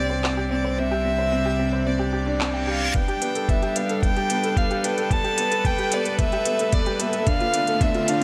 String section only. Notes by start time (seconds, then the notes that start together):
Already playing: C3 G3 D4
0.55 D5
3.48 A4
4.22 B4
7.27 D3
7.62 A3
7.71 E5
7.96 F4